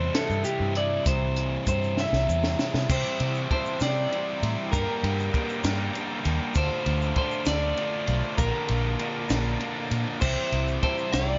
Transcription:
Already playing: distorted electric guitar C3 E3 G3 C4 E4, overdriven electric guitar E3 C4, clean electric guitar C5
0.14 overdriven electric guitar E4, clean electric guitar A4, snare, closed hi-hat
0.30 fingered electric bass G2, shaker
0.44 overdriven electric guitar C4, clean electric guitar G4, closed hi-hat, shaker
0.60 fingered electric bass G2
0.75 overdriven electric guitar E4, clean electric guitar D5, closed hi-hat
1.06 fingered electric bass C2, overdriven electric guitar C3, clean electric guitar C5, kick, closed hi-hat, shaker
1.36 overdriven electric guitar E3, closed hi-hat, shaker
1.67 fingered electric bass G2, overdriven electric guitar C4, clean electric guitar C5, kick, closed hi-hat, shaker
1.84 shaker
1.96 overdriven electric guitar E4, clean electric guitar E5, snare, shaker
2.13 fingered electric bass C2, snare
2.27 fingered electric bass E2, overdriven electric guitar C4, shaker
2.44 snare, shaker
2.58 overdriven electric guitar E4, snare, shaker
2.74 fingered electric bass C3, snare
2.89 overdriven electric guitar C3 E4, fingered electric bass C3, distorted electric guitar E3 G3 C4 G4, transistor combo organ C5 E5 D6, clean electric guitar C5, synth bell G5, kick, crash, shaker
3.20 fingered electric bass C3, distorted electric guitar E3 G3 C4 G4, ride
3.35 shaker
3.50 overdriven electric guitar C3 E4, distorted electric guitar E3 G3 C4 G4, clean electric guitar C5, synth bell A5, kick, ride
3.66 shaker
3.80 fingered electric bass C3, overdriven electric guitar C3 E4, distorted electric guitar E3 G3 C4 G4, clean electric guitar D5, synth bell G5, snare, ride, shaker
4.10 overdriven electric guitar C3 E4, distorted electric guitar E3 G3 C4 G4, ride
4.42 fingered electric bass A2, distorted electric guitar E3 G3 C4 G4, ride, shaker
4.71 overdriven electric guitar G2 D3, fingered electric bass G2, distorted electric guitar G3 A#3 D4 G4, clean electric guitar A#4, transistor combo organ A#4 G5, synth bell G5, kick, ride, shaker
5.03 fingered electric bass G2, distorted electric guitar G3 A#3 D4 G4, ride
5.19 shaker
5.33 overdriven electric guitar D3, distorted electric guitar G3 A#3 D4 G4, kick, ride
5.49 shaker
5.64 fingered electric bass G2, overdriven electric guitar G2 D3, distorted electric guitar G3 A#3 D4 G4, snare, ride, shaker
5.93 overdriven electric guitar D3, distorted electric guitar G3 A#3 D4 G4, ride, shaker
6.25 fingered electric bass D#2, distorted electric guitar G3 A#3 D4 G4, ride, shaker
6.54 fingered electric bass D2, distorted electric guitar D3 A3 D4 F4, overdriven electric guitar F3, transistor combo organ C5 F5, clean electric guitar C5, synth bell A5, kick, ride, shaker
6.86 fingered electric bass D2, distorted electric guitar D3 A3 D4 F4, ride
7.02 shaker
7.16 distorted electric guitar D3 A3 D4 F4, overdriven electric guitar F3, clean electric guitar C5, synth bell A5, kick, ride
7.31 shaker
7.46 fingered electric bass D2, distorted electric guitar D3 A3 D4 F4, overdriven electric guitar F3, clean electric guitar D5, synth bell A5, snare, ride, shaker
7.77 distorted electric guitar D3 A3 D4 F4, overdriven electric guitar F3, ride
8.07 fingered electric bass B1, distorted electric guitar D3 A3 D4 F4, ride, shaker
8.37 fingered electric bass A#1, overdriven electric guitar A#2 F3, distorted electric guitar D3 A#3 D4 F4, clean electric guitar A#4, transistor combo organ A#4 A5, synth bell F5, kick, ride, shaker
8.68 fingered electric bass A#1, distorted electric guitar D3 A#3 D4 F4, ride
8.99 distorted electric guitar D3 A#3 D4 F4, overdriven electric guitar F3, ride
9.29 fingered electric bass A#1, overdriven electric guitar A#2 F3, distorted electric guitar D3 A#3 D4 F4, snare, ride, shaker
9.59 distorted electric guitar D3 A#3 D4 F4, overdriven electric guitar F3, ride
9.90 fingered electric bass A#2, distorted electric guitar D3 A#3 D4 F4, ride, shaker
10.20 fingered electric bass C2, overdriven electric guitar C3 E4, distorted electric guitar E3 G3 C4 G4, clean electric guitar C5, transistor combo organ C5 E5, synth bell G5, kick, crash, shaker
10.52 fingered electric bass C2, distorted electric guitar E3 G3 C4 G4, ride
10.68 shaker
10.82 overdriven electric guitar C3 E4, distorted electric guitar E3 G3 C4 G4, clean electric guitar C5, synth bell A5, kick, ride
10.98 shaker
11.12 fingered electric bass C2, overdriven electric guitar C3 E4, distorted electric guitar E3 G3 C4 G4, clean electric guitar D5, synth bell G5, snare, ride, shaker

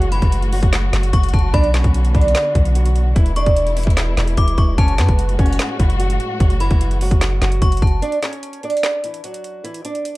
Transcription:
Already playing: 808-style bass F#1, string section A2 G#3 F#4
0.02 closed hi-hat
0.12 steel-string acoustic guitar E3 E4, synth bell B5, closed hi-hat
0.22 808-style bass F#1, kick, closed hi-hat
0.32 closed hi-hat
0.42 closed hi-hat
0.53 steel-string acoustic guitar F#3 F#4, closed hi-hat, open hi-hat
0.63 808-style bass F#1, kick, closed hi-hat
0.73 snare, clap, closed hi-hat
0.93 808-style bass F#1, steel-string acoustic guitar F#3 F#4, snare, clap, closed hi-hat
1.03 closed hi-hat
1.13 808-style bass F#1, synth bell C#6, kick, closed hi-hat
1.24 closed hi-hat
1.29 closed hi-hat
1.34 808-style bass F#1, synth bell A5, kick, closed hi-hat
1.39 closed hi-hat
1.54 808-style bass B1, string section D3 B3, steel-string acoustic guitar D4 D5, synth bell B5, kick, closed hi-hat
1.64 closed hi-hat
1.74 steel-string acoustic guitar C#4 C#5, snare, clap, closed hi-hat
1.84 808-style bass B1, kick, closed hi-hat
1.94 closed hi-hat
2.05 closed hi-hat
2.15 808-style bass B1, steel-string acoustic guitar D4 D5, kick, closed hi-hat
2.21 closed hi-hat
2.28 closed hi-hat
2.35 snare, clap, closed hi-hat
2.55 808-style bass B1, steel-string acoustic guitar E3 E4, kick, closed hi-hat
2.65 closed hi-hat
2.75 steel-string acoustic guitar F#3 F#4, closed hi-hat
2.86 closed hi-hat
2.96 closed hi-hat
3.15 808-style bass E1, string section B2 G#3 E4, steel-string acoustic guitar E3 E4, kick, closed hi-hat
3.26 closed hi-hat
3.36 steel-string acoustic guitar D4 D5, synth bell C#6, closed hi-hat
3.46 808-style bass E1, kick, closed hi-hat
3.56 closed hi-hat
3.67 closed hi-hat
3.77 steel-string acoustic guitar E3 E4, closed hi-hat, open hi-hat
3.83 808-style bass E1, kick, closed hi-hat
3.90 closed hi-hat
3.97 snare, clap, closed hi-hat
4.17 808-style bass E1, steel-string acoustic guitar E3 E4, snare, clap, closed hi-hat
4.27 closed hi-hat
4.37 808-style bass E1, synth bell D6, kick, closed hi-hat
4.48 closed hi-hat
4.58 808-style bass E1, synth bell C#6, kick, closed hi-hat
4.78 808-style bass F#1, string section A2 F#4, steel-string acoustic guitar C#4 C#5, synth bell A5, kick, closed hi-hat
4.88 closed hi-hat
4.98 808-style bass F#2, steel-string acoustic guitar B3 B4, snare, clap, closed hi-hat
5.09 808-style bass F#1, kick, closed hi-hat
5.19 closed hi-hat
5.29 closed hi-hat
5.39 808-style bass F#1, steel-string acoustic guitar C#4 C#5, kick, closed hi-hat
5.46 closed hi-hat
5.53 closed hi-hat
5.59 snare, clap, closed hi-hat
5.80 808-style bass F#1, steel-string acoustic guitar E3 E4, kick, closed hi-hat
5.90 closed hi-hat
5.99 steel-string acoustic guitar F#3 F#4, closed hi-hat
6.10 closed hi-hat
6.20 closed hi-hat
6.40 808-style bass F#1, steel-string acoustic guitar F#3 F#4, kick, closed hi-hat
6.50 closed hi-hat
6.60 steel-string acoustic guitar E3 E4, synth bell B5, closed hi-hat
6.71 808-style bass F#1, kick, closed hi-hat
6.81 closed hi-hat
6.91 closed hi-hat
7.01 steel-string acoustic guitar F#3 F#4, closed hi-hat, open hi-hat
7.11 808-style bass F#1, kick, closed hi-hat
7.21 snare, clap, closed hi-hat
7.42 808-style bass F#1, steel-string acoustic guitar F#3 F#4, snare, clap, closed hi-hat
7.52 closed hi-hat
7.62 808-style bass F#1, synth bell C#6, kick, closed hi-hat
7.72 closed hi-hat
7.77 closed hi-hat
7.82 808-style bass F#1, synth bell A5, kick, closed hi-hat
7.87 closed hi-hat
8.02 steel-string acoustic guitar D4 D5, closed hi-hat
8.12 closed hi-hat
8.22 steel-string acoustic guitar C#4 C#5, snare, clap, closed hi-hat
8.33 closed hi-hat
8.43 closed hi-hat
8.53 closed hi-hat
8.63 steel-string acoustic guitar D4 D5, closed hi-hat
8.70 closed hi-hat
8.77 closed hi-hat
8.83 snare, clap, closed hi-hat
9.04 steel-string acoustic guitar E3 E4, closed hi-hat
9.14 closed hi-hat
9.24 steel-string acoustic guitar F#3 F#4, closed hi-hat
9.34 closed hi-hat
9.44 closed hi-hat
9.64 steel-string acoustic guitar E3 E4, closed hi-hat
9.74 closed hi-hat
9.85 steel-string acoustic guitar D4 D5, closed hi-hat
9.95 closed hi-hat
10.05 closed hi-hat

